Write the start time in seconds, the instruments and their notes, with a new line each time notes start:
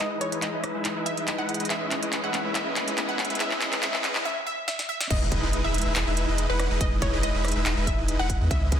Already playing: analog synth pad E3 D#4 G#4, riser
0.00 supersaw synth G#3 D#4 E4 B4 D#5, synth pluck D#5
0.21 synth pluck C#5, closed hi-hat
0.32 supersaw synth G#3 D#4 E4 B4 D#5, closed hi-hat
0.42 synth pluck D#5, clap, closed hi-hat
0.54 supersaw synth G#3 D#4 E4 B4 E5
0.64 cross-stick, closed hi-hat
0.75 supersaw synth G#3 D#4 E4 B4 E5
0.85 supersaw synth G#3 D#4 E4 B4 D#5, clap, closed hi-hat
0.96 supersaw synth G#3 D#4 E4 B4 E5
1.06 synth pluck E5, closed hi-hat
1.17 supersaw synth G#3 D#4 E4 B4 D#5, closed hi-hat
1.28 clap, closed hi-hat
1.38 supersaw synth G#3 D#4 E4 B4 F#5, synth pluck F#5
1.49 closed hi-hat
1.54 closed hi-hat
1.60 supersaw synth G#3 D#4 E4 B4 D#5, closed hi-hat
1.65 closed hi-hat
1.70 supersaw synth G#3 C#4 E4 B4 D#5, analog synth pad C#4 B4, synth pluck E5, clap, closed hi-hat
1.91 clap, closed hi-hat
2.02 supersaw synth G#3 C#4 E4 B4 D#5, closed hi-hat
2.13 clap, closed hi-hat
2.24 supersaw synth G#3 C#4 E4 B4 E5, synth pluck F#5
2.34 clap, closed hi-hat
2.45 supersaw synth G#3 C#4 E4 B4 E5
2.55 supersaw synth G#3 C#4 E4 B4 D#5, synth pluck E5, clap, closed hi-hat
2.76 clap, closed hi-hat
2.88 supersaw synth G#3 C#4 E4 B4 D#5, closed hi-hat
2.98 clap, closed hi-hat
3.09 supersaw synth G#3 C#4 E4 B4 E5, synth pluck F#5
3.19 clap, closed hi-hat
3.25 closed hi-hat
3.30 supersaw synth G#3 C#4 E4 B4 E5, closed hi-hat
3.35 closed hi-hat
3.40 supersaw synth G#3 C#4 E4 B4 D#5, synth pluck E5, clap, closed hi-hat
3.51 clap
3.61 clap, closed hi-hat
3.73 supersaw synth G#3 C#4 E4 B4 D#5, clap, closed hi-hat
3.83 supersaw synth G#3 C#4 E4 B4 D#5, synth pluck E5, clap, closed hi-hat
3.94 clap
4.04 clap, closed hi-hat
4.15 supersaw synth G#3 C#4 E4 B4 D#5, clap
4.25 synth pluck E5
4.47 synth pluck E5
4.68 synth pluck E5, snare
4.79 snare
4.89 synth pluck E5
5.01 snare
5.10 sub bass E1, supersaw synth G#3 D#4 E4 B4 D#5, analog synth pad G#3 D#4 E4, synth pluck D#5, kick, closed hi-hat, crash, impact
5.32 kick, closed hi-hat
5.43 sub bass E1, supersaw synth G#3 D#4 E4 B4 D#5
5.53 closed hi-hat
5.64 sub bass E1, supersaw synth G#3 D#4 E4 B4 E5, synth pluck E5
5.74 closed hi-hat
5.78 closed hi-hat
5.82 closed hi-hat
5.86 sub bass E1, supersaw synth G#3 D#4 E4 B4 E5
5.96 sub bass E1, supersaw synth G#3 D#4 E4 B4 D#5, clap, closed hi-hat
6.07 sub bass E1, supersaw synth G#3 D#4 E4 B4 E5
6.17 closed hi-hat
6.28 sub bass E1, supersaw synth G#3 D#4 E4 B4 D#5
6.38 closed hi-hat
6.49 sub bass E1, supersaw synth G#3 D#4 E4 B4 F#5, synth pluck B4
6.59 cross-stick, closed hi-hat
6.71 sub bass E1, supersaw synth G#3 D#4 E4 B4 D#5
6.81 sub bass E1, supersaw synth G#3 D#4 E4 B4 D#5, synth pluck D#5, kick, closed hi-hat
7.02 synth pluck C#5, kick, closed hi-hat
7.13 sub bass E1, supersaw synth G#3 D#4 E4 B4 D#5
7.23 synth pluck D#5, closed hi-hat
7.34 sub bass E1, supersaw synth G#3 D#4 E4 B4 E5
7.45 cross-stick, closed hi-hat
7.48 closed hi-hat
7.52 closed hi-hat
7.56 sub bass E1, supersaw synth G#3 D#4 E4 B4 E5
7.66 sub bass E1, supersaw synth G#3 D#4 E4 B4 D#5, clap, closed hi-hat
7.77 sub bass E1, supersaw synth G#3 D#4 E4 B4 E5
7.87 synth pluck E5, kick, closed hi-hat
7.98 sub bass E1, supersaw synth G#3 D#4 E4 B4 D#5
8.08 closed hi-hat
8.19 sub bass E1, supersaw synth G#3 D#4 E4 B4 F#5, synth pluck F#5
8.30 kick, closed hi-hat
8.41 sub bass E2, supersaw synth G#3 D#4 E4 B4 D#5
8.51 sub bass C#2, supersaw synth G#3 C#4 E4 B4 D#5, analog synth pad B3 E4, synth pluck E5, kick, closed hi-hat
8.72 kick, closed hi-hat